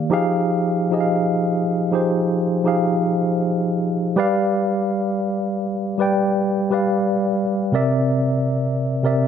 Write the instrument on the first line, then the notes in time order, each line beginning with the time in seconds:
tine electric piano
Already playing: D#3 A#3 G4 D5 F5
0.10 F3 D#4 G4 G#4 F5
0.91 F3 D#4 G4 G#4 D#5
1.00 F5
1.91 F3 D#4 G4 G#4 C5
2.64 F3 D#4 G4 G#4 F5
4.16 G3 G4 B4 D5 F5
5.98 G3 G4 B4 D5 G5
6.70 G3 G4 B4 D5 F5
7.72 C3 C4 A#4 D5 E5
9.03 C3 C4 A#4 D5 E5